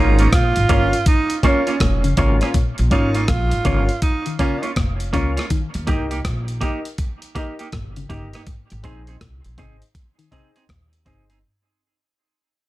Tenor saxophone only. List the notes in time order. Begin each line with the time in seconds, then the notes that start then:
Already playing: D#4
0.33 F4
1.07 D#4
1.44 C#4
2.91 D#4
3.29 F4
4.03 D#4
4.39 C#4